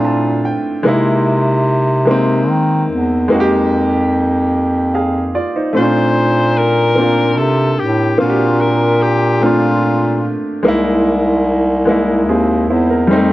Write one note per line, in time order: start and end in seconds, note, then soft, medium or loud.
0.00 0.58 A#2 medium
0.00 0.86 A3 medium
0.00 0.86 C4 medium
0.00 0.87 D4 medium
0.00 0.86 E4 medium
0.00 0.86 F4 medium
0.05 0.42 A5 medium
0.45 0.82 G5 medium
0.83 2.51 C3 medium
0.83 1.62 G#3 medium
0.83 1.62 A#3 medium
0.83 1.63 D#4 medium
0.88 1.64 E4 medium
2.05 2.84 G#3 medium
2.05 2.85 A#3 medium
2.05 2.86 D#4 medium
2.11 2.87 C4 medium
2.49 2.85 D#3 medium
2.90 3.26 E2 medium
3.28 5.44 F2 medium
3.28 4.07 G#3 medium
3.28 4.08 A#3 medium
3.28 4.08 D#4 medium
3.34 3.38 F#4 medium
3.40 4.13 G4 medium
4.94 5.33 G#4 soft
4.94 5.32 F5 medium
5.35 5.54 F4 soft
5.35 5.54 D5 medium
5.56 5.94 D#4 soft
5.56 5.94 C5 medium
5.73 7.41 A#2 medium
5.73 6.51 A3 medium
5.73 6.52 C4 medium
5.73 5.82 C#4 medium
5.73 6.59 C5 medium
5.78 6.54 F4 medium
5.83 6.56 D4 medium
6.57 7.40 A#4 loud
6.95 7.74 A#3 medium
6.95 7.75 C4 medium
6.95 7.76 D4 medium
7.01 7.77 F4 medium
7.38 7.75 C3 medium
7.38 7.81 A4 medium
7.79 8.16 A2 medium
7.79 8.19 G4 medium
8.18 10.38 A#2 medium
8.18 8.96 A#3 medium
8.18 8.97 C4 medium
8.18 8.98 D4 medium
8.18 8.62 F4 medium
8.23 8.28 F#4 medium
8.30 9.02 G4 medium
8.61 9.04 A#4 medium
9.02 9.45 G4 medium
9.40 10.19 A3 medium
9.40 10.20 C4 medium
9.40 10.21 D4 medium
9.40 10.34 F4 medium
9.46 10.22 F4 medium
10.63 12.30 C2 medium
10.63 11.41 G#3 medium
10.63 11.42 A#3 medium
10.63 11.43 D#4 medium
10.68 11.44 E4 medium
11.85 12.64 G#3 medium
11.85 12.65 A#3 medium
11.85 12.28 D#4 medium
11.91 12.29 E4 medium
12.29 12.65 D#2 medium
12.29 12.67 C4 medium
12.29 12.67 G#4 medium
12.69 13.05 E2 medium
12.69 12.89 E4 medium
12.69 12.88 C5 medium
12.90 13.28 A#4 medium
13.07 13.33 F2 medium
13.07 13.33 G3 medium
13.07 13.15 G#3 medium
13.07 13.33 C4 medium
13.13 13.33 A3 medium
13.13 13.33 D#4 medium